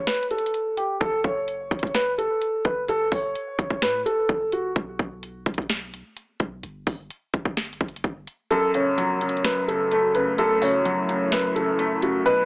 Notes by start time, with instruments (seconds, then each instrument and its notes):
0.07 grand piano B4, snare, closed hi-hat
0.15 closed hi-hat
0.23 closed hi-hat
0.31 grand piano A4, closed hi-hat
0.38 closed hi-hat
0.46 closed hi-hat
0.54 closed hi-hat
0.77 grand piano G4, closed hi-hat
1.01 808-style bass F#1, grand piano A4, kick, closed hi-hat
1.24 808-style bass F#1, grand piano C#5, kick, closed hi-hat
1.48 closed hi-hat
1.71 808-style bass F#1, kick, closed hi-hat
1.79 kick, closed hi-hat
1.87 closed hi-hat
1.95 grand piano B4, snare, closed hi-hat
2.18 grand piano A4, closed hi-hat
2.42 closed hi-hat
2.65 808-style bass F#1, grand piano B4, kick, closed hi-hat
2.88 808-style bass F#1, grand piano A4, closed hi-hat
3.12 808-style bass F#1, grand piano C#5, kick, open hi-hat
3.35 closed hi-hat
3.59 808-style bass F#1, kick, closed hi-hat
3.70 kick
3.82 808-style bass A2, grand piano B4, snare, closed hi-hat
4.06 grand piano A4, closed hi-hat
4.29 808-style bass F#1, kick, closed hi-hat
4.52 grand piano F#4, closed hi-hat
4.76 808-style bass B1, kick, closed hi-hat
4.99 808-style bass B1, kick, closed hi-hat
5.23 closed hi-hat
5.46 808-style bass B1, kick, closed hi-hat
5.54 kick, closed hi-hat
5.62 closed hi-hat
5.70 snare, closed hi-hat
5.94 closed hi-hat
6.17 closed hi-hat
6.40 808-style bass B1, kick, closed hi-hat
6.63 808-style bass G1, closed hi-hat
6.87 808-style bass G1, kick, open hi-hat
7.10 closed hi-hat
7.34 808-style bass G1, kick, closed hi-hat
7.45 kick
7.57 snare, closed hi-hat
7.65 closed hi-hat
7.73 closed hi-hat
7.81 808-style bass F#1, kick, closed hi-hat
7.88 closed hi-hat
7.96 closed hi-hat
8.04 808-style bass G1, kick, closed hi-hat
8.27 closed hi-hat
8.50 felt piano F#2, analog synth pad C#3 F#3 A3 F#4, grand piano A4, closed hi-hat
8.74 felt piano C#3, grand piano C#5, closed hi-hat
8.98 felt piano F#3, closed hi-hat
9.21 felt piano C#3, closed hi-hat
9.29 closed hi-hat
9.37 closed hi-hat
9.44 felt piano F#2, grand piano B4, snare, closed hi-hat
9.68 felt piano C#3, grand piano A4, closed hi-hat
9.92 felt piano A3, closed hi-hat
10.15 felt piano C#3, grand piano B4, closed hi-hat
10.38 felt piano F#2, analog synth pad E4, grand piano A4, closed hi-hat
10.62 felt piano C#3, grand piano C#5, open hi-hat
10.85 felt piano F#3, closed hi-hat
11.09 felt piano C#3, closed hi-hat
11.32 felt piano F#2, grand piano B4, snare, closed hi-hat
11.55 felt piano C#3, grand piano A4, closed hi-hat
11.79 felt piano A3, closed hi-hat
12.02 felt piano C#3, grand piano F#4, closed hi-hat
12.26 felt piano B2, analog synth pad D3 B3 F#4, grand piano B4, closed hi-hat